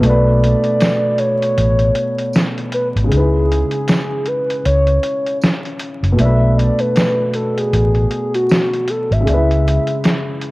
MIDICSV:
0, 0, Header, 1, 5, 480
1, 0, Start_track
1, 0, Tempo, 769231
1, 16, Time_signature, 4, 2, 24, 8
1, 6559, End_track
2, 0, Start_track
2, 0, Title_t, "Soft synth lead"
2, 0, Program_c, 0, 80
2, 25, Note_on_c, 0, 74, 112
2, 743, Note_on_c, 0, 73, 118
2, 752, Note_off_c, 0, 74, 0
2, 1459, Note_off_c, 0, 73, 0
2, 1709, Note_on_c, 0, 71, 91
2, 1796, Note_off_c, 0, 71, 0
2, 1945, Note_on_c, 0, 68, 100
2, 2668, Note_on_c, 0, 71, 106
2, 2677, Note_off_c, 0, 68, 0
2, 2902, Note_off_c, 0, 71, 0
2, 2905, Note_on_c, 0, 73, 104
2, 3356, Note_off_c, 0, 73, 0
2, 3867, Note_on_c, 0, 76, 110
2, 4105, Note_on_c, 0, 74, 97
2, 4114, Note_off_c, 0, 76, 0
2, 4244, Note_on_c, 0, 71, 104
2, 4253, Note_off_c, 0, 74, 0
2, 4587, Note_on_c, 0, 69, 89
2, 4596, Note_off_c, 0, 71, 0
2, 4727, Note_on_c, 0, 68, 103
2, 4737, Note_off_c, 0, 69, 0
2, 5201, Note_off_c, 0, 68, 0
2, 5210, Note_on_c, 0, 66, 115
2, 5552, Note_on_c, 0, 69, 96
2, 5562, Note_off_c, 0, 66, 0
2, 5690, Note_on_c, 0, 76, 105
2, 5699, Note_off_c, 0, 69, 0
2, 6403, Note_off_c, 0, 76, 0
2, 6559, End_track
3, 0, Start_track
3, 0, Title_t, "Upright piano"
3, 0, Program_c, 1, 0
3, 0, Control_c, 1, 64, 127
3, 0, Note_on_c, 1, 47, 75
3, 4, Note_on_c, 1, 57, 74
3, 26, Control_c, 1, 64, 0
3, 31, Note_on_c, 1, 62, 67
3, 60, Note_on_c, 1, 71, 86
3, 148, Control_c, 1, 64, 127
3, 1892, Note_off_c, 1, 47, 0
3, 1898, Note_on_c, 1, 49, 59
3, 1905, Note_off_c, 1, 57, 0
3, 1919, Note_off_c, 1, 62, 0
3, 1923, Note_on_c, 1, 56, 60
3, 1933, Note_off_c, 1, 71, 0
3, 1945, Control_c, 1, 64, 0
3, 1950, Note_on_c, 1, 63, 44
3, 1979, Note_on_c, 1, 71, 64
3, 1990, Note_off_c, 1, 63, 0
3, 1991, Note_on_c, 1, 64, 62
3, 2062, Control_c, 1, 64, 127
3, 3812, Note_off_c, 1, 49, 0
3, 3821, Note_on_c, 1, 47, 69
3, 3825, Note_off_c, 1, 56, 0
3, 3849, Note_on_c, 1, 57, 53
3, 3853, Note_off_c, 1, 71, 0
3, 3859, Note_off_c, 1, 64, 0
3, 3865, Control_c, 1, 64, 0
3, 3875, Note_on_c, 1, 62, 64
3, 3902, Note_on_c, 1, 71, 76
3, 3956, Control_c, 1, 64, 127
3, 5734, Note_off_c, 1, 47, 0
3, 5745, Note_on_c, 1, 49, 67
3, 5748, Note_off_c, 1, 57, 0
3, 5761, Note_off_c, 1, 62, 0
3, 5771, Note_on_c, 1, 56, 63
3, 5774, Note_off_c, 1, 71, 0
3, 5786, Control_c, 1, 64, 0
3, 5799, Note_on_c, 1, 62, 49
3, 5826, Note_on_c, 1, 71, 65
3, 5835, Note_off_c, 1, 62, 0
3, 5840, Note_on_c, 1, 64, 67
3, 5909, Control_c, 1, 64, 127
3, 6559, Note_off_c, 1, 49, 0
3, 6559, Note_off_c, 1, 56, 0
3, 6559, Note_off_c, 1, 64, 0
3, 6559, Note_off_c, 1, 71, 0
3, 6559, End_track
4, 0, Start_track
4, 0, Title_t, "Fingered electric bass"
4, 0, Program_c, 2, 33
4, 22, Note_on_c, 2, 35, 94
4, 334, Note_off_c, 2, 35, 0
4, 984, Note_on_c, 2, 33, 91
4, 1180, Note_off_c, 2, 33, 0
4, 1844, Note_on_c, 2, 32, 81
4, 1924, Note_off_c, 2, 32, 0
4, 1945, Note_on_c, 2, 37, 94
4, 2256, Note_off_c, 2, 37, 0
4, 2905, Note_on_c, 2, 37, 86
4, 3100, Note_off_c, 2, 37, 0
4, 3762, Note_on_c, 2, 30, 86
4, 3843, Note_off_c, 2, 30, 0
4, 3861, Note_on_c, 2, 35, 110
4, 4173, Note_off_c, 2, 35, 0
4, 4823, Note_on_c, 2, 33, 92
4, 5019, Note_off_c, 2, 33, 0
4, 5685, Note_on_c, 2, 32, 83
4, 5765, Note_off_c, 2, 32, 0
4, 5786, Note_on_c, 2, 37, 83
4, 6096, Note_off_c, 2, 37, 0
4, 6559, End_track
5, 0, Start_track
5, 0, Title_t, "Drums"
5, 21, Note_on_c, 9, 42, 73
5, 83, Note_off_c, 9, 42, 0
5, 274, Note_on_c, 9, 42, 61
5, 336, Note_off_c, 9, 42, 0
5, 398, Note_on_c, 9, 42, 44
5, 461, Note_off_c, 9, 42, 0
5, 503, Note_on_c, 9, 42, 84
5, 503, Note_on_c, 9, 54, 64
5, 512, Note_on_c, 9, 38, 96
5, 565, Note_off_c, 9, 42, 0
5, 566, Note_off_c, 9, 54, 0
5, 574, Note_off_c, 9, 38, 0
5, 738, Note_on_c, 9, 42, 61
5, 800, Note_off_c, 9, 42, 0
5, 889, Note_on_c, 9, 42, 53
5, 951, Note_off_c, 9, 42, 0
5, 984, Note_on_c, 9, 42, 81
5, 1047, Note_off_c, 9, 42, 0
5, 1117, Note_on_c, 9, 42, 37
5, 1179, Note_off_c, 9, 42, 0
5, 1218, Note_on_c, 9, 42, 70
5, 1280, Note_off_c, 9, 42, 0
5, 1363, Note_on_c, 9, 42, 52
5, 1426, Note_off_c, 9, 42, 0
5, 1456, Note_on_c, 9, 54, 56
5, 1471, Note_on_c, 9, 38, 98
5, 1474, Note_on_c, 9, 42, 83
5, 1518, Note_off_c, 9, 54, 0
5, 1534, Note_off_c, 9, 38, 0
5, 1536, Note_off_c, 9, 42, 0
5, 1608, Note_on_c, 9, 42, 36
5, 1671, Note_off_c, 9, 42, 0
5, 1697, Note_on_c, 9, 42, 75
5, 1760, Note_off_c, 9, 42, 0
5, 1850, Note_on_c, 9, 42, 48
5, 1913, Note_off_c, 9, 42, 0
5, 1944, Note_on_c, 9, 42, 77
5, 2006, Note_off_c, 9, 42, 0
5, 2194, Note_on_c, 9, 42, 64
5, 2256, Note_off_c, 9, 42, 0
5, 2315, Note_on_c, 9, 42, 46
5, 2378, Note_off_c, 9, 42, 0
5, 2419, Note_on_c, 9, 42, 80
5, 2422, Note_on_c, 9, 54, 69
5, 2428, Note_on_c, 9, 38, 101
5, 2481, Note_off_c, 9, 42, 0
5, 2485, Note_off_c, 9, 54, 0
5, 2491, Note_off_c, 9, 38, 0
5, 2655, Note_on_c, 9, 42, 59
5, 2718, Note_off_c, 9, 42, 0
5, 2808, Note_on_c, 9, 42, 50
5, 2870, Note_off_c, 9, 42, 0
5, 2903, Note_on_c, 9, 42, 76
5, 2966, Note_off_c, 9, 42, 0
5, 3037, Note_on_c, 9, 42, 35
5, 3100, Note_off_c, 9, 42, 0
5, 3138, Note_on_c, 9, 42, 65
5, 3201, Note_off_c, 9, 42, 0
5, 3284, Note_on_c, 9, 42, 45
5, 3346, Note_off_c, 9, 42, 0
5, 3378, Note_on_c, 9, 54, 58
5, 3391, Note_on_c, 9, 38, 103
5, 3394, Note_on_c, 9, 42, 73
5, 3441, Note_off_c, 9, 54, 0
5, 3454, Note_off_c, 9, 38, 0
5, 3456, Note_off_c, 9, 42, 0
5, 3528, Note_on_c, 9, 42, 34
5, 3590, Note_off_c, 9, 42, 0
5, 3616, Note_on_c, 9, 42, 78
5, 3679, Note_off_c, 9, 42, 0
5, 3768, Note_on_c, 9, 42, 42
5, 3830, Note_off_c, 9, 42, 0
5, 3861, Note_on_c, 9, 42, 81
5, 3923, Note_off_c, 9, 42, 0
5, 4113, Note_on_c, 9, 42, 66
5, 4175, Note_off_c, 9, 42, 0
5, 4235, Note_on_c, 9, 42, 46
5, 4298, Note_off_c, 9, 42, 0
5, 4341, Note_on_c, 9, 42, 76
5, 4343, Note_on_c, 9, 54, 72
5, 4350, Note_on_c, 9, 38, 98
5, 4404, Note_off_c, 9, 42, 0
5, 4406, Note_off_c, 9, 54, 0
5, 4413, Note_off_c, 9, 38, 0
5, 4577, Note_on_c, 9, 42, 54
5, 4640, Note_off_c, 9, 42, 0
5, 4728, Note_on_c, 9, 42, 53
5, 4790, Note_off_c, 9, 42, 0
5, 4826, Note_on_c, 9, 42, 77
5, 4888, Note_off_c, 9, 42, 0
5, 4959, Note_on_c, 9, 42, 34
5, 5021, Note_off_c, 9, 42, 0
5, 5059, Note_on_c, 9, 42, 65
5, 5121, Note_off_c, 9, 42, 0
5, 5206, Note_on_c, 9, 42, 49
5, 5269, Note_off_c, 9, 42, 0
5, 5299, Note_on_c, 9, 54, 60
5, 5313, Note_on_c, 9, 38, 106
5, 5315, Note_on_c, 9, 42, 81
5, 5361, Note_off_c, 9, 54, 0
5, 5375, Note_off_c, 9, 38, 0
5, 5377, Note_off_c, 9, 42, 0
5, 5450, Note_on_c, 9, 42, 37
5, 5512, Note_off_c, 9, 42, 0
5, 5538, Note_on_c, 9, 42, 70
5, 5601, Note_off_c, 9, 42, 0
5, 5690, Note_on_c, 9, 42, 47
5, 5752, Note_off_c, 9, 42, 0
5, 5785, Note_on_c, 9, 42, 73
5, 5848, Note_off_c, 9, 42, 0
5, 5934, Note_on_c, 9, 42, 36
5, 5996, Note_off_c, 9, 42, 0
5, 6039, Note_on_c, 9, 42, 74
5, 6102, Note_off_c, 9, 42, 0
5, 6159, Note_on_c, 9, 42, 46
5, 6222, Note_off_c, 9, 42, 0
5, 6264, Note_on_c, 9, 42, 81
5, 6264, Note_on_c, 9, 54, 61
5, 6273, Note_on_c, 9, 38, 105
5, 6326, Note_off_c, 9, 54, 0
5, 6327, Note_off_c, 9, 42, 0
5, 6336, Note_off_c, 9, 38, 0
5, 6498, Note_on_c, 9, 42, 55
5, 6559, Note_off_c, 9, 42, 0
5, 6559, End_track
0, 0, End_of_file